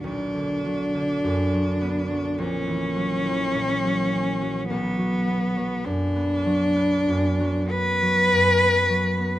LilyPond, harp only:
\new Staff \with { instrumentName = "Harp" } { \clef bass \time 4/4 \key b \minor \tempo 4 = 52 <b,, ges>16 d16 fis16 d16 fis,16 fis16 b16 fis16 ais,,16 e16 fis16 e16 ais,16 fis16 cis'16 fis16 | b,,16 fis16 b16 fis16 fis,16 b16 fis16 b16 fis,16 fis16 b16 fis16 fis,16 b16 fis16 b16 | }